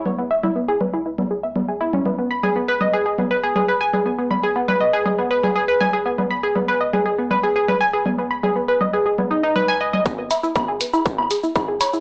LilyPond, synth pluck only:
\new Staff \with { instrumentName = "Synth pluck" } { \time 4/4 \key cis \minor \tempo 4 = 120 b16 b16 e''16 e'16 b16 gis'16 b'16 e'16 e'16 b16 gis'16 e''16 b16 gis'16 e'16 cis'16 | b16 b16 b''16 gis'16 b16 b'16 dis''16 gis'16 gis'16 b16 b'16 gis'16 gis'16 b'16 gis''16 gis'16 | b16 b16 b''16 gis'16 b16 b'16 dis''16 gis'16 gis'16 b16 b'16 gis'16 gis'16 b'16 gis''16 gis'16 | b16 b16 b''16 gis'16 b16 b'16 dis''16 gis'16 gis'16 b16 b'16 gis'16 gis'16 b'16 gis''16 gis'16 |
b16 b16 b''16 gis'16 b16 b'16 dis''16 gis'16 gis'16 b16 dis'16 dis'16 b'16 gis''16 dis''16 dis''16 | b16 b16 e''16 e'16 b16 gis'16 b'16 e'16 r16 b16 gis'16 e'16 e'16 gis'16 cis''16 e'16 | }